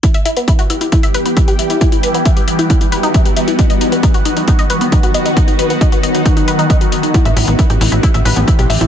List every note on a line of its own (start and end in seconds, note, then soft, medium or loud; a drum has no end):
0.03 3.55 E3 medium
0.03 3.55 G3 medium
0.03 7.10 B3 medium
0.03 0.08 E4 loud
0.03 1.79 G4 medium
0.03 kick loud
0.03 closed hi-hat medium
0.14 0.25 E5 loud
0.14 closed hi-hat medium
0.25 0.33 E4 loud
0.25 closed hi-hat medium
0.37 0.44 B3 medium
0.37 closed hi-hat medium
0.48 0.58 E4 loud
0.48 kick loud
0.48 closed hi-hat medium
0.59 0.63 F#4 loud
0.59 closed hi-hat medium
0.70 0.77 E4 medium
0.70 closed hi-hat medium
0.81 0.91 E4 medium
0.81 closed hi-hat medium
0.92 0.97 E4 loud
0.92 kick loud
0.92 closed hi-hat medium
1.03 1.14 E5 loud
1.03 closed hi-hat medium
1.14 1.22 B4 loud
1.14 closed hi-hat medium
1.26 1.33 B3 medium
1.26 closed hi-hat medium
1.37 1.47 E4 loud
1.37 kick loud
1.37 closed hi-hat medium
1.48 1.52 G4 medium
1.48 closed hi-hat medium
1.59 1.66 E5 medium
1.59 closed hi-hat medium
1.70 1.80 E4 medium
1.70 closed hi-hat medium
1.81 1.85 E4 loud
1.81 7.10 F#4 medium
1.81 kick loud
1.81 closed hi-hat medium
1.92 1.97 E4 medium
1.92 closed hi-hat medium
2.03 2.11 B4 loud
2.03 closed hi-hat medium
2.14 2.22 B3 medium
2.14 closed hi-hat medium
2.25 2.36 E5 loud
2.25 kick loud
2.25 closed hi-hat medium
2.37 2.41 G4 medium
2.37 closed hi-hat medium
2.48 2.55 E5 medium
2.48 closed hi-hat medium
2.59 2.69 E4 medium
2.59 closed hi-hat medium
2.70 2.77 E4 medium
2.70 kick loud
2.70 closed hi-hat medium
2.81 2.85 E4 medium
2.81 closed hi-hat medium
2.92 2.99 B4 loud
2.92 closed hi-hat medium
3.03 3.11 D#4 loud
3.03 closed hi-hat soft
3.14 3.25 E5 loud
3.14 kick loud
3.14 closed hi-hat medium
3.25 3.30 G4 medium
3.25 closed hi-hat soft
3.37 3.44 E5 medium
3.37 closed hi-hat medium
3.48 3.58 E4 medium
3.48 closed hi-hat medium
3.59 7.11 D#3 medium
3.59 7.11 F#3 medium
3.59 3.63 D#4 loud
3.59 kick loud
3.59 closed hi-hat medium
3.70 3.80 D#5 loud
3.70 closed hi-hat soft
3.81 3.88 D#4 loud
3.81 closed hi-hat medium
3.92 3.99 B3 medium
3.92 closed hi-hat soft
4.03 4.14 D#4 loud
4.03 kick loud
4.03 closed hi-hat medium
4.14 4.19 F#4 loud
4.14 closed hi-hat soft
4.25 4.33 D#4 medium
4.25 closed hi-hat medium
4.37 4.47 D#4 medium
4.37 closed hi-hat soft
4.48 4.52 D#4 loud
4.48 kick loud
4.48 closed hi-hat medium
4.59 4.69 D#5 loud
4.59 closed hi-hat soft
4.70 4.77 B4 loud
4.70 closed hi-hat medium
4.81 4.88 B3 medium
4.81 closed hi-hat soft
4.92 5.03 D#4 loud
4.92 kick loud
4.92 closed hi-hat medium
5.03 5.08 F#4 medium
5.03 closed hi-hat soft
5.14 5.22 D#5 medium
5.14 closed hi-hat medium
5.26 5.36 D#4 medium
5.26 closed hi-hat medium
5.37 5.41 D#4 loud
5.37 kick loud
5.37 closed hi-hat medium
5.48 5.52 D#4 medium
5.48 closed hi-hat soft
5.59 5.66 B4 loud
5.59 closed hi-hat medium
5.70 5.77 B3 medium
5.70 closed hi-hat soft
5.81 5.92 D#5 loud
5.81 kick loud
5.81 closed hi-hat medium
5.92 5.97 F#4 medium
5.92 closed hi-hat soft
6.03 6.11 D#5 medium
6.03 closed hi-hat medium
6.14 6.24 D#4 medium
6.14 closed hi-hat soft
6.25 6.33 D#4 medium
6.25 kick loud
6.25 closed hi-hat medium
6.37 6.41 D#4 medium
6.37 closed hi-hat soft
6.48 6.55 B4 loud
6.48 closed hi-hat medium
6.59 6.66 D#4 loud
6.59 closed hi-hat soft
6.70 6.81 D#5 loud
6.70 kick loud
6.70 closed hi-hat medium
6.81 6.85 F#4 medium
6.81 closed hi-hat soft
6.92 6.99 D#5 medium
6.92 closed hi-hat medium
7.03 7.14 D#4 medium
7.03 closed hi-hat soft
7.14 8.87 E3 medium
7.14 8.87 A3 medium
7.14 8.87 C4 medium
7.14 7.19 E4 loud
7.14 8.87 G4 medium
7.14 kick loud
7.14 closed hi-hat medium
7.25 7.34 A1 medium
7.25 7.36 E5 loud
7.25 closed hi-hat soft
7.37 7.45 A1 loud
7.37 7.44 E4 loud
7.37 open hi-hat loud
7.48 7.56 A1 medium
7.48 7.55 B3 medium
7.48 closed hi-hat soft
7.59 7.69 E4 loud
7.59 kick loud
7.59 closed hi-hat medium
7.70 7.78 A1 medium
7.70 7.80 G4 medium
7.70 closed hi-hat soft
7.81 7.89 A1 loud
7.81 7.88 E4 medium
7.81 open hi-hat loud
7.92 8.00 A1 medium
7.92 8.02 E4 medium
7.92 closed hi-hat soft
8.03 8.08 E4 loud
8.03 kick loud
8.03 closed hi-hat medium
8.14 8.22 A1 medium
8.14 8.25 E5 loud
8.14 closed hi-hat soft
8.25 8.34 A1 loud
8.25 8.33 B4 loud
8.25 open hi-hat loud
8.36 8.45 A1 medium
8.36 8.44 B3 medium
8.36 closed hi-hat soft
8.48 8.58 E4 loud
8.48 kick loud
8.48 closed hi-hat medium
8.59 8.67 B1 medium
8.59 8.63 G4 medium
8.59 closed hi-hat soft
8.70 8.78 A1 loud
8.70 8.77 E5 medium
8.70 open hi-hat loud
8.81 8.87 A1 medium
8.81 8.87 E4 medium
8.81 closed hi-hat medium